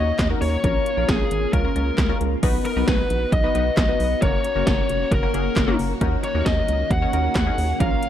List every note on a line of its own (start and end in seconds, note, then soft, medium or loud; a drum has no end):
0.00 0.12 D#2 loud
0.00 0.62 D#3 medium
0.00 2.39 A#3 medium
0.00 1.49 C#4 medium
0.00 0.22 D#4 medium
0.00 0.22 F#4 medium
0.00 0.60 F#4 medium
0.00 0.22 C#5 medium
0.00 0.18 D#5 loud
0.19 0.35 D#2 loud
0.19 0.25 D#5 loud
0.19 kick loud
0.19 snare loud
0.19 clap loud
0.19 closed hi-hat medium
0.30 0.55 D#4 medium
0.30 0.55 F#4 medium
0.30 0.55 A#4 medium
0.41 0.57 D#2 loud
0.41 1.11 C#5 loud
0.41 open hi-hat medium
0.64 0.80 A#1 loud
0.64 0.89 C#4 medium
0.64 0.89 F4 medium
0.64 1.52 F4 medium
0.64 0.89 A#4 medium
0.64 kick loud
0.64 closed hi-hat medium
0.86 closed hi-hat medium
0.97 1.05 A#1 loud
0.97 1.47 C#4 medium
0.97 1.47 F4 medium
0.97 1.47 A#4 medium
1.09 1.24 A#1 loud
1.09 1.53 G#4 medium
1.09 kick loud
1.09 snare loud
1.09 closed hi-hat medium
1.31 1.47 G#1 loud
1.31 closed hi-hat medium
1.53 1.69 C#2 loud
1.53 2.42 C#3 medium
1.53 2.42 G#3 medium
1.53 1.62 C#4 medium
1.53 2.42 F4 medium
1.53 1.62 F4 medium
1.53 1.62 A#4 medium
1.53 2.17 A#4 medium
1.53 kick loud
1.53 closed hi-hat medium
1.65 1.73 C#4 medium
1.65 1.73 F4 medium
1.65 1.73 A#4 medium
1.76 1.91 C#2 loud
1.76 2.01 C#4 medium
1.76 2.01 F4 medium
1.76 2.01 A#4 medium
1.76 closed hi-hat medium
1.98 2.14 C#2 loud
1.98 kick loud
1.98 snare loud
1.98 clap medium
1.98 closed hi-hat medium
2.09 2.34 C#4 medium
2.09 2.34 F4 medium
2.09 2.34 A#4 loud
2.21 2.36 C#2 loud
2.21 closed hi-hat medium
2.43 2.59 B1 loud
2.43 4.20 B3 medium
2.43 2.68 B3 medium
2.43 4.20 D#4 medium
2.43 2.68 D#4 medium
2.43 7.76 F#4 medium
2.43 2.68 F#4 medium
2.43 2.68 B4 loud
2.43 kick loud
2.43 closed hi-hat medium
2.43 crash loud
2.65 2.87 A#4 medium
2.65 closed hi-hat medium
2.76 2.84 B1 loud
2.76 3.26 B3 medium
2.76 3.26 D#4 medium
2.76 3.26 F#4 medium
2.76 3.26 B4 medium
2.88 3.03 B1 loud
2.88 3.29 B4 medium
2.88 kick loud
2.88 snare loud
2.88 closed hi-hat medium
3.10 3.26 A#1 loud
3.10 closed hi-hat medium
3.32 3.48 B1 loud
3.32 3.76 D#5 loud
3.32 kick loud
3.32 closed hi-hat medium
3.44 3.52 B3 medium
3.44 3.52 D#4 medium
3.44 3.52 F#4 medium
3.44 3.52 B4 medium
3.55 3.71 B1 loud
3.55 3.80 B3 medium
3.55 3.80 D#4 medium
3.55 3.80 F#4 medium
3.55 3.80 B4 medium
3.55 closed hi-hat medium
3.77 3.93 B1 loud
3.77 4.22 D#5 loud
3.77 kick loud
3.77 snare loud
3.77 clap loud
3.77 closed hi-hat medium
3.88 4.13 B3 medium
3.88 4.13 D#4 medium
3.88 4.13 F#4 medium
3.88 4.13 B4 medium
4.00 4.15 B1 loud
4.00 open hi-hat medium
4.22 4.38 F#1 loud
4.22 8.09 A#3 medium
4.22 4.47 A#3 medium
4.22 5.99 C#4 medium
4.22 4.47 C#4 medium
4.22 4.47 F#4 medium
4.22 4.47 A#4 medium
4.22 4.66 C#5 loud
4.22 kick loud
4.22 closed hi-hat medium
4.44 closed hi-hat medium
4.56 4.64 F#1 medium
4.56 5.05 A#3 medium
4.56 5.05 C#4 medium
4.56 5.05 F#4 medium
4.56 5.05 A#4 medium
4.67 4.83 F#1 loud
4.67 5.13 C#5 medium
4.67 kick loud
4.67 snare loud
4.67 closed hi-hat medium
4.89 5.05 F1 medium
4.89 closed hi-hat medium
5.11 5.27 F#1 loud
5.11 5.75 A#4 medium
5.11 kick loud
5.11 closed hi-hat medium
5.23 5.31 A#3 medium
5.23 5.31 C#4 medium
5.23 5.31 F#4 medium
5.23 5.31 A#4 medium
5.34 5.50 F#1 loud
5.34 5.59 A#3 medium
5.34 5.59 C#4 medium
5.34 5.59 F#4 medium
5.34 5.59 G#4 medium
5.34 closed hi-hat medium
5.56 5.72 F#1 loud
5.56 kick loud
5.56 snare loud
5.56 clap loud
5.56 closed hi-hat medium
5.68 5.92 A#3 loud
5.68 5.92 C#4 medium
5.68 5.92 F#4 medium
5.68 5.92 A#4 loud
5.79 5.94 F#1 loud
5.79 open hi-hat medium
6.01 6.17 D#2 loud
6.01 7.79 D#3 medium
6.01 6.26 C#4 loud
6.01 8.09 C#4 medium
6.01 6.26 D#4 medium
6.01 6.26 F#4 medium
6.01 6.26 A#4 loud
6.01 kick loud
6.01 closed hi-hat medium
6.24 6.46 C#5 medium
6.24 closed hi-hat medium
6.35 6.43 D#2 loud
6.35 6.85 C#4 medium
6.35 6.85 D#4 medium
6.35 6.85 F#4 medium
6.35 6.85 A#4 medium
6.46 6.62 D#2 loud
6.46 6.92 D#5 loud
6.46 kick loud
6.46 snare loud
6.46 closed hi-hat medium
6.68 6.84 C#2 medium
6.68 closed hi-hat medium
6.91 7.06 D#2 loud
6.91 7.34 F#5 loud
6.91 kick loud
6.91 closed hi-hat medium
7.02 7.10 C#4 medium
7.02 7.10 D#4 medium
7.02 7.10 F#4 medium
7.02 7.10 C#5 medium
7.13 7.29 D#2 loud
7.13 7.38 C#4 medium
7.13 7.38 D#4 medium
7.13 7.38 F#4 medium
7.13 7.38 A#4 medium
7.13 closed hi-hat medium
7.35 7.51 D#2 loud
7.35 7.77 F#5 loud
7.35 kick loud
7.35 snare loud
7.35 clap loud
7.35 closed hi-hat medium
7.47 7.72 C#4 medium
7.47 7.72 D#4 medium
7.47 7.72 F#4 medium
7.47 7.72 G#4 medium
7.58 7.74 D#2 loud
7.58 open hi-hat medium
7.80 7.96 A#1 loud
7.80 8.05 A#3 medium
7.80 8.05 C#4 medium
7.80 8.09 F4 medium
7.80 8.05 F4 medium
7.80 8.05 A#4 medium
7.80 8.09 F5 loud
7.80 kick loud
7.80 closed hi-hat medium
8.03 closed hi-hat medium